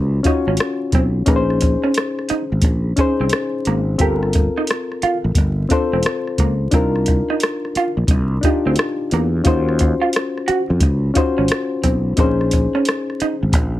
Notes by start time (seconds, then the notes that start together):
Already playing: C#2 C#4 F4 F#4 C5
0.23 C#4 D#4 F4 F#4 C#5, kick, closed hi-hat
0.47 G#1 C#4
0.57 cross-stick, closed hi-hat
0.92 B1 C4, kick, closed hi-hat
1.26 A#1 A#3 C#4 D#4 G#4 B4, kick, closed hi-hat
1.36 C5
1.50 cross-stick
1.61 muted clean electric guitar stroke, kick, closed hi-hat
1.83 C#4, cross-stick
1.94 cross-stick, closed hi-hat
2.19 cross-stick
2.29 D#4, muted fretless electric bass stroke, closed hi-hat
2.52 G#1
2.62 A#1, muted clean electric guitar stroke, kick, closed hi-hat
2.96 C#4 D#4 G#4, kick, closed hi-hat
3.00 C5
3.20 C2 C4
3.29 cross-stick, closed hi-hat
3.65 G#1 A#3, closed hi-hat
3.98 G1 C4 F4 G4 A4 A#4, kick, closed hi-hat
4.23 cross-stick
4.33 muted clean electric guitar stroke, kick, closed hi-hat
4.57 D#4, cross-stick
4.67 cross-stick, closed hi-hat
4.92 cross-stick
5.02 F4, muted fretless electric bass stroke, closed hi-hat
5.24 A1
5.35 G1, muted clean electric guitar stroke, kick, closed hi-hat
5.69 C4 D4 F4 A4 C5, kick, closed hi-hat
5.93 E1 C4
6.03 cross-stick, closed hi-hat
6.27 cross-stick
6.38 C#2 A#3, kick, closed hi-hat
6.71 C2 C4 D4 D#4 F4 A#4, kick, closed hi-hat
6.96 cross-stick
7.06 muted clean electric guitar stroke, kick, closed hi-hat
7.30 D#4, cross-stick
7.40 cross-stick, closed hi-hat
7.65 cross-stick
7.75 F4, muted fretless electric bass stroke, closed hi-hat
7.97 A#1
8.07 C2, muted clean electric guitar stroke, kick, closed hi-hat
8.41 D4 D#4 F4, kick, closed hi-hat
8.46 G4
8.66 D2 C4
8.76 cross-stick, closed hi-hat
9.11 E2 A#3, closed hi-hat
9.44 D#2 C#4 D#4 F4 F#4 C5, kick, closed hi-hat
9.69 cross-stick
9.79 muted clean electric guitar stroke, kick, closed hi-hat
10.02 F4, cross-stick
10.13 cross-stick, closed hi-hat
10.38 cross-stick
10.48 F#4, muted fretless electric bass stroke, closed hi-hat
10.70 F2
10.80 C#2, muted clean electric guitar stroke, kick, closed hi-hat
11.14 C#4 D#4 F4 F#4 C5, kick, closed hi-hat
11.38 G#1 C#4
11.48 cross-stick, closed hi-hat
11.83 B1 C4, kick, closed hi-hat
12.17 A#1 A#3 C4 D#4 G#4 C5, kick, closed hi-hat
12.23 C#4
12.41 cross-stick
12.51 muted clean electric guitar stroke, kick, closed hi-hat
12.75 C#4, cross-stick
12.85 cross-stick, closed hi-hat
13.10 cross-stick
13.20 D#4, muted fretless electric bass stroke, closed hi-hat
13.43 G#1
13.53 A#1, muted clean electric guitar stroke, kick, closed hi-hat